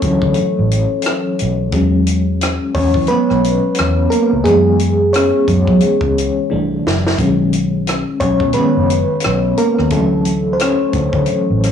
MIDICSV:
0, 0, Header, 1, 5, 480
1, 0, Start_track
1, 0, Tempo, 681818
1, 1219, Time_signature, 4, 2, 24, 8
1, 8249, End_track
2, 0, Start_track
2, 0, Title_t, "FM electric piano"
2, 0, Program_c, 0, 5
2, 0, Control_c, 0, 64, 127
2, 0, Note_on_c, 0, 57, 61
2, 0, Note_on_c, 0, 61, 61
2, 0, Note_on_c, 0, 69, 80
2, 0, Note_on_c, 0, 73, 77
2, 20, Note_on_c, 0, 52, 49
2, 24, Note_on_c, 0, 54, 48
2, 27, Note_off_c, 0, 61, 0
2, 27, Note_on_c, 0, 61, 56
2, 352, Note_off_c, 0, 52, 0
2, 354, Note_off_c, 0, 54, 0
2, 356, Note_off_c, 0, 61, 0
2, 710, Note_off_c, 0, 73, 0
2, 1218, Note_on_c, 0, 54, 51
2, 1220, Note_on_c, 0, 56, 46
2, 1223, Note_on_c, 0, 61, 60
2, 1229, Control_c, 0, 64, 0
2, 1231, Note_off_c, 0, 57, 0
2, 1233, Note_off_c, 0, 69, 0
2, 1342, Control_c, 0, 64, 127
2, 1933, Note_on_c, 0, 73, 91
2, 1941, Note_off_c, 0, 61, 0
2, 1950, Note_on_c, 0, 61, 68
2, 2168, Note_off_c, 0, 61, 0
2, 2170, Note_on_c, 0, 71, 95
2, 2183, Note_off_c, 0, 73, 0
2, 2186, Note_on_c, 0, 59, 69
2, 2874, Note_off_c, 0, 59, 0
2, 2888, Note_on_c, 0, 70, 78
2, 2909, Note_on_c, 0, 58, 57
2, 2916, Note_off_c, 0, 71, 0
2, 3110, Note_off_c, 0, 54, 0
2, 3111, Note_off_c, 0, 56, 0
2, 3126, Note_on_c, 0, 68, 84
2, 3127, Note_off_c, 0, 58, 0
2, 3137, Note_on_c, 0, 52, 48
2, 3141, Note_off_c, 0, 70, 0
2, 3144, Note_on_c, 0, 56, 45
2, 3146, Note_on_c, 0, 59, 56
2, 3147, Note_off_c, 0, 56, 0
2, 3147, Note_on_c, 0, 56, 64
2, 3149, Control_c, 0, 64, 0
2, 3272, Control_c, 0, 64, 127
2, 3470, Note_off_c, 0, 52, 0
2, 3475, Note_off_c, 0, 59, 0
2, 3595, Note_off_c, 0, 56, 0
2, 3612, Note_on_c, 0, 73, 76
2, 3627, Note_off_c, 0, 68, 0
2, 3630, Note_on_c, 0, 61, 60
2, 4547, Note_off_c, 0, 73, 0
2, 4556, Note_off_c, 0, 61, 0
2, 4576, Note_on_c, 0, 52, 49
2, 4581, Note_on_c, 0, 57, 41
2, 4586, Note_on_c, 0, 62, 55
2, 4589, Control_c, 0, 64, 0
2, 4709, Control_c, 0, 64, 127
2, 4910, Note_off_c, 0, 52, 0
2, 4912, Note_off_c, 0, 57, 0
2, 4915, Note_off_c, 0, 62, 0
2, 5060, Note_on_c, 0, 51, 50
2, 5064, Note_on_c, 0, 56, 45
2, 5068, Note_on_c, 0, 61, 56
2, 5069, Control_c, 0, 64, 0
2, 5204, Control_c, 0, 64, 127
2, 5751, Note_off_c, 0, 51, 0
2, 5753, Note_off_c, 0, 56, 0
2, 5755, Note_off_c, 0, 61, 0
2, 5773, Note_on_c, 0, 73, 91
2, 5784, Note_on_c, 0, 61, 70
2, 6005, Note_off_c, 0, 61, 0
2, 6012, Note_on_c, 0, 71, 93
2, 6014, Note_on_c, 0, 51, 44
2, 6018, Note_on_c, 0, 56, 39
2, 6020, Note_on_c, 0, 61, 48
2, 6023, Note_off_c, 0, 73, 0
2, 6024, Note_on_c, 0, 59, 69
2, 6232, Note_off_c, 0, 51, 0
2, 6234, Note_off_c, 0, 56, 0
2, 6236, Note_off_c, 0, 61, 0
2, 6714, Note_off_c, 0, 59, 0
2, 6743, Note_on_c, 0, 70, 77
2, 6749, Note_on_c, 0, 58, 57
2, 6757, Note_off_c, 0, 71, 0
2, 6842, Note_off_c, 0, 70, 0
2, 6848, Note_off_c, 0, 58, 0
2, 6977, Note_on_c, 0, 52, 50
2, 6980, Note_on_c, 0, 69, 79
2, 6981, Note_on_c, 0, 54, 48
2, 6983, Note_on_c, 0, 61, 56
2, 6986, Note_on_c, 0, 57, 67
2, 6988, Control_c, 0, 64, 0
2, 7091, Control_c, 0, 64, 127
2, 7389, Note_off_c, 0, 69, 0
2, 7392, Note_off_c, 0, 57, 0
2, 7415, Note_on_c, 0, 72, 59
2, 7458, Note_off_c, 0, 72, 0
2, 7463, Note_off_c, 0, 61, 0
2, 7468, Note_on_c, 0, 73, 78
2, 7472, Note_on_c, 0, 61, 62
2, 8249, Note_off_c, 0, 52, 0
2, 8249, Note_off_c, 0, 54, 0
2, 8249, Note_off_c, 0, 61, 0
2, 8249, Note_off_c, 0, 73, 0
2, 8249, End_track
3, 0, Start_track
3, 0, Title_t, "Fingered electric bass"
3, 0, Program_c, 1, 33
3, 25, Note_on_c, 1, 38, 76
3, 131, Note_off_c, 1, 38, 0
3, 161, Note_on_c, 1, 50, 85
3, 240, Note_off_c, 1, 50, 0
3, 414, Note_on_c, 1, 33, 81
3, 596, Note_off_c, 1, 33, 0
3, 999, Note_on_c, 1, 35, 82
3, 1225, Note_off_c, 1, 35, 0
3, 1225, Note_on_c, 1, 40, 86
3, 1811, Note_off_c, 1, 40, 0
3, 1944, Note_on_c, 1, 40, 75
3, 2050, Note_off_c, 1, 40, 0
3, 2081, Note_on_c, 1, 52, 83
3, 2160, Note_off_c, 1, 52, 0
3, 2329, Note_on_c, 1, 35, 78
3, 2513, Note_off_c, 1, 35, 0
3, 2674, Note_on_c, 1, 40, 82
3, 2857, Note_off_c, 1, 40, 0
3, 3048, Note_on_c, 1, 37, 74
3, 3124, Note_off_c, 1, 37, 0
3, 3146, Note_on_c, 1, 42, 85
3, 3732, Note_off_c, 1, 42, 0
3, 3865, Note_on_c, 1, 42, 76
3, 3971, Note_off_c, 1, 42, 0
3, 4004, Note_on_c, 1, 54, 73
3, 4082, Note_off_c, 1, 54, 0
3, 4240, Note_on_c, 1, 37, 68
3, 4427, Note_off_c, 1, 37, 0
3, 4597, Note_on_c, 1, 36, 80
3, 4778, Note_off_c, 1, 36, 0
3, 4835, Note_on_c, 1, 30, 74
3, 5018, Note_off_c, 1, 30, 0
3, 5066, Note_on_c, 1, 35, 88
3, 5652, Note_off_c, 1, 35, 0
3, 5787, Note_on_c, 1, 35, 75
3, 5892, Note_off_c, 1, 35, 0
3, 5925, Note_on_c, 1, 47, 80
3, 6002, Note_off_c, 1, 47, 0
3, 6175, Note_on_c, 1, 30, 75
3, 6357, Note_off_c, 1, 30, 0
3, 6518, Note_on_c, 1, 35, 83
3, 6700, Note_off_c, 1, 35, 0
3, 6894, Note_on_c, 1, 39, 76
3, 6968, Note_off_c, 1, 39, 0
3, 6985, Note_on_c, 1, 38, 91
3, 7571, Note_off_c, 1, 38, 0
3, 7706, Note_on_c, 1, 38, 80
3, 7811, Note_off_c, 1, 38, 0
3, 7845, Note_on_c, 1, 50, 87
3, 7922, Note_off_c, 1, 50, 0
3, 8097, Note_on_c, 1, 33, 82
3, 8249, Note_off_c, 1, 33, 0
3, 8249, End_track
4, 0, Start_track
4, 0, Title_t, "Muted fingered electric bass strokes"
4, 277, Note_on_c, 9, 29, 41
4, 348, Note_off_c, 9, 29, 0
4, 2195, Note_on_c, 9, 29, 43
4, 2266, Note_off_c, 9, 29, 0
4, 4113, Note_on_c, 9, 29, 38
4, 4183, Note_off_c, 9, 29, 0
4, 6040, Note_on_c, 9, 29, 39
4, 6110, Note_off_c, 9, 29, 0
4, 7960, Note_on_c, 9, 29, 42
4, 8030, Note_off_c, 9, 29, 0
4, 8249, End_track
5, 0, Start_track
5, 0, Title_t, "Drums"
5, 13, Note_on_c, 9, 42, 60
5, 15, Note_on_c, 9, 36, 82
5, 83, Note_off_c, 9, 42, 0
5, 86, Note_off_c, 9, 36, 0
5, 153, Note_on_c, 9, 36, 82
5, 223, Note_off_c, 9, 36, 0
5, 239, Note_on_c, 9, 42, 60
5, 310, Note_off_c, 9, 42, 0
5, 502, Note_on_c, 9, 42, 67
5, 573, Note_off_c, 9, 42, 0
5, 717, Note_on_c, 9, 42, 72
5, 748, Note_on_c, 9, 37, 97
5, 787, Note_off_c, 9, 42, 0
5, 818, Note_off_c, 9, 37, 0
5, 978, Note_on_c, 9, 42, 56
5, 1048, Note_off_c, 9, 42, 0
5, 1211, Note_on_c, 9, 42, 78
5, 1215, Note_on_c, 9, 36, 97
5, 1282, Note_off_c, 9, 42, 0
5, 1285, Note_off_c, 9, 36, 0
5, 1454, Note_on_c, 9, 42, 63
5, 1524, Note_off_c, 9, 42, 0
5, 1697, Note_on_c, 9, 42, 79
5, 1711, Note_on_c, 9, 37, 93
5, 1768, Note_off_c, 9, 42, 0
5, 1782, Note_off_c, 9, 37, 0
5, 1931, Note_on_c, 9, 46, 44
5, 1934, Note_on_c, 9, 36, 86
5, 2001, Note_off_c, 9, 46, 0
5, 2005, Note_off_c, 9, 36, 0
5, 2072, Note_on_c, 9, 36, 84
5, 2142, Note_off_c, 9, 36, 0
5, 2160, Note_on_c, 9, 42, 55
5, 2230, Note_off_c, 9, 42, 0
5, 2324, Note_on_c, 9, 37, 31
5, 2394, Note_off_c, 9, 37, 0
5, 2424, Note_on_c, 9, 42, 66
5, 2494, Note_off_c, 9, 42, 0
5, 2637, Note_on_c, 9, 42, 75
5, 2667, Note_on_c, 9, 37, 88
5, 2707, Note_off_c, 9, 42, 0
5, 2738, Note_off_c, 9, 37, 0
5, 2897, Note_on_c, 9, 42, 55
5, 2967, Note_off_c, 9, 42, 0
5, 3134, Note_on_c, 9, 42, 80
5, 3136, Note_on_c, 9, 36, 97
5, 3205, Note_off_c, 9, 42, 0
5, 3206, Note_off_c, 9, 36, 0
5, 3375, Note_on_c, 9, 42, 64
5, 3445, Note_off_c, 9, 42, 0
5, 3618, Note_on_c, 9, 42, 78
5, 3632, Note_on_c, 9, 37, 89
5, 3688, Note_off_c, 9, 42, 0
5, 3702, Note_off_c, 9, 37, 0
5, 3856, Note_on_c, 9, 42, 63
5, 3857, Note_on_c, 9, 36, 84
5, 3926, Note_off_c, 9, 42, 0
5, 3927, Note_off_c, 9, 36, 0
5, 3995, Note_on_c, 9, 36, 83
5, 4065, Note_off_c, 9, 36, 0
5, 4086, Note_on_c, 9, 42, 56
5, 4156, Note_off_c, 9, 42, 0
5, 4230, Note_on_c, 9, 36, 87
5, 4301, Note_off_c, 9, 36, 0
5, 4351, Note_on_c, 9, 42, 62
5, 4421, Note_off_c, 9, 42, 0
5, 4835, Note_on_c, 9, 38, 73
5, 4906, Note_off_c, 9, 38, 0
5, 4974, Note_on_c, 9, 38, 73
5, 5045, Note_off_c, 9, 38, 0
5, 5057, Note_on_c, 9, 42, 79
5, 5058, Note_on_c, 9, 36, 105
5, 5128, Note_off_c, 9, 36, 0
5, 5128, Note_off_c, 9, 42, 0
5, 5299, Note_on_c, 9, 42, 61
5, 5369, Note_off_c, 9, 42, 0
5, 5540, Note_on_c, 9, 42, 76
5, 5554, Note_on_c, 9, 37, 93
5, 5610, Note_off_c, 9, 42, 0
5, 5625, Note_off_c, 9, 37, 0
5, 5775, Note_on_c, 9, 42, 60
5, 5777, Note_on_c, 9, 36, 83
5, 5845, Note_off_c, 9, 42, 0
5, 5847, Note_off_c, 9, 36, 0
5, 5914, Note_on_c, 9, 36, 82
5, 5984, Note_off_c, 9, 36, 0
5, 6003, Note_on_c, 9, 42, 61
5, 6074, Note_off_c, 9, 42, 0
5, 6265, Note_on_c, 9, 42, 64
5, 6335, Note_off_c, 9, 42, 0
5, 6477, Note_on_c, 9, 42, 71
5, 6508, Note_on_c, 9, 37, 93
5, 6548, Note_off_c, 9, 42, 0
5, 6579, Note_off_c, 9, 37, 0
5, 6740, Note_on_c, 9, 42, 53
5, 6811, Note_off_c, 9, 42, 0
5, 6889, Note_on_c, 9, 37, 31
5, 6960, Note_off_c, 9, 37, 0
5, 6972, Note_on_c, 9, 42, 77
5, 6977, Note_on_c, 9, 36, 105
5, 7042, Note_off_c, 9, 42, 0
5, 7047, Note_off_c, 9, 36, 0
5, 7216, Note_on_c, 9, 42, 59
5, 7286, Note_off_c, 9, 42, 0
5, 7458, Note_on_c, 9, 42, 79
5, 7472, Note_on_c, 9, 37, 88
5, 7529, Note_off_c, 9, 42, 0
5, 7543, Note_off_c, 9, 37, 0
5, 7695, Note_on_c, 9, 42, 60
5, 7697, Note_on_c, 9, 36, 85
5, 7765, Note_off_c, 9, 42, 0
5, 7768, Note_off_c, 9, 36, 0
5, 7835, Note_on_c, 9, 36, 89
5, 7905, Note_off_c, 9, 36, 0
5, 7925, Note_on_c, 9, 42, 58
5, 7996, Note_off_c, 9, 42, 0
5, 8190, Note_on_c, 9, 42, 66
5, 8198, Note_on_c, 9, 37, 34
5, 8249, Note_off_c, 9, 37, 0
5, 8249, Note_off_c, 9, 42, 0
5, 8249, End_track
0, 0, End_of_file